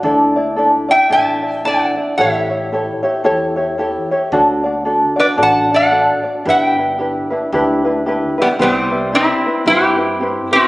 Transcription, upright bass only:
X:1
M:4/4
L:1/8
Q:"Swing" 1/4=112
K:G
V:1 name="Upright bass" clef=bass
D,,4 A,,,4 | A,,,4 E,,4 | D,,4 A,,,4 | G,,,4 D,,4 |
[K:C] C,,4 G,,4 |]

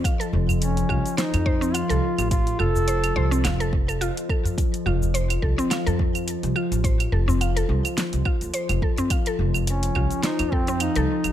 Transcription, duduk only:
X:1
M:4/4
L:1/8
Q:"Swing 16ths" 1/4=106
K:none
V:1 name="Duduk"
z2 _D2 _E2 F2 | F A4 z3 | z8 | z8 |
z2 _D2 _E C E2 |]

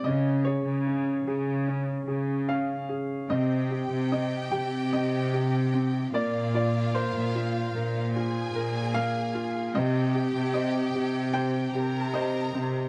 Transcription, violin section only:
X:1
M:4/4
L:1/8
Q:1/4=74
K:Cm
V:1 name="Violin section"
z8 | [Gg]6- [Gg] [Ff]- | [Ff]4 [Aa]4 | [Gg]4- [Gg] [Bb]3 |]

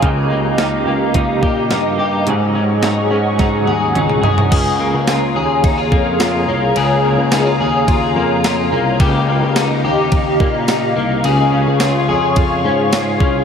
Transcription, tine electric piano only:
X:1
M:4/4
L:1/16
Q:1/4=107
K:Bbm
V:1 name="Tine electric piano" clef=bass
D,,6 D,,4 B,,2 =G,,2 G,,2 | A,,6 A,,4 E,,2 D,,2 C,,2 | D,,3 D,,3 E,,4 F,,4 C,,2 | D,,3 D,,3 E,,4 F,,4 C,,2 |
D,,3 D,,3 E,,4 B,,4 C,,2 | D,,3 D,,3 F,,4 A,,4 C,,2 |]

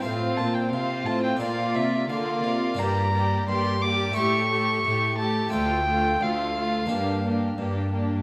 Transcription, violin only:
X:1
M:4/4
L:1/16
Q:1/4=88
K:Bblyd
V:1 name="Violin"
f2 a g f2 a g f2 e2 f4 | [K:Gdor] b4 c'2 d'2 ^c'6 a2 | g4 f8 z4 |]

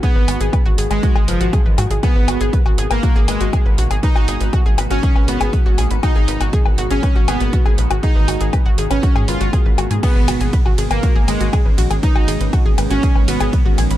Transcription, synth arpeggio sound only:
X:1
M:4/4
L:1/16
Q:1/4=120
K:G#m
V:1 name="Synth arpeggio sound"
G B F G B F G B F G B F G B F G | G B F G B F G B F G B F G B F G | B F G B F G B F G B F G B F G B | F G B F G B F G B F G B F G B F |
G B F G B F G B F G B F G B F G | G B F G B F G B F G B F G B F G | B F G B F G B F G B F G B F G B |]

